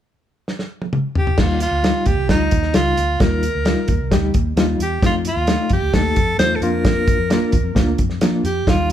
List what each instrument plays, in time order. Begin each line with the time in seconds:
0.48 snare
0.59 snare
0.82 high tom
0.93 mid tom
1.15 alto saxophone G4, floor tom
1.27 floor tom
1.38 fingered electric bass D#2, reed electric piano G3 D#4 F4, alto saxophone F4, kick, snare, crash
1.60 alto saxophone F4, closed hi-hat
1.71 fingered electric bass D2
1.83 reed electric piano G3 D#4 F4, snare, closed hi-hat
2.06 fingered electric bass D#2, alto saxophone G4, kick, closed hi-hat
2.17 fingered electric bass C2
2.28 fingered electric bass D2, reed electric piano G3 D#4 F4, alto saxophone D#4, kick, snare, closed hi-hat
2.51 fingered electric bass D#2, kick, closed hi-hat
2.63 snare
2.73 fingered electric bass C#2, reed electric piano G3 D#4 F4, alto saxophone F4, snare, closed hi-hat
2.97 fingered electric bass D2, closed hi-hat
3.20 fingered electric bass D#2, reed electric piano G3 D#4 F4, alto saxophone A#4, kick, snare, closed hi-hat
3.43 closed hi-hat
3.55 fingered electric bass D2
3.65 reed electric piano G3 D#4 F4, snare, closed hi-hat
3.88 fingered electric bass D#2, kick, closed hi-hat
4.01 fingered electric bass C2
4.11 fingered electric bass D2, reed electric piano G3 D#4 G4, kick, snare, closed hi-hat
4.34 fingered electric bass D#2, kick, closed hi-hat
4.56 fingered electric bass D#2, reed electric piano G3 D#4 F4, snare, closed hi-hat
4.79 fingered electric bass E2, alto saxophone G4, closed hi-hat
5.02 fingered electric bass F2, reed electric piano A3 D#4 F4, alto saxophone F4, kick, snare, closed hi-hat
5.25 alto saxophone F4, closed hi-hat
5.36 fingered electric bass D#2
5.47 reed electric piano A3 D#4 F4, snare, closed hi-hat
5.70 fingered electric bass F2, alto saxophone G4, kick, closed hi-hat
5.82 fingered electric bass D2
5.93 fingered electric bass D#2, reed electric piano A3 D#4 G4, alto saxophone A4, kick, snare, closed hi-hat
6.16 fingered electric bass F2, kick, closed hi-hat
6.38 fingered electric bass E2, reed electric piano A3 D#4 F4, alto saxophone C5, snare, closed hi-hat
6.56 alto saxophone A4
6.61 fingered electric bass F2, reed electric piano A#3 D4 F4, alto saxophone A#4, closed hi-hat
6.85 kick, snare, closed hi-hat
7.07 kick, closed hi-hat
7.18 fingered electric bass F2
7.30 reed electric piano A#3 D4 F4, snare, closed hi-hat
7.52 fingered electric bass D#2, kick, closed hi-hat
7.64 fingered electric bass F2
7.75 fingered electric bass D2, reed electric piano A#3 D4 F4, kick, snare, closed hi-hat
7.98 fingered electric bass F2, kick, closed hi-hat
8.10 snare
8.21 fingered electric bass F3, reed electric piano A#3 D4 F4, snare, closed hi-hat
8.44 fingered electric bass F2, alto saxophone G4, closed hi-hat
8.66 fingered electric bass D#2, reed electric piano G3 D#4 F4, alto saxophone F4, kick, snare, closed hi-hat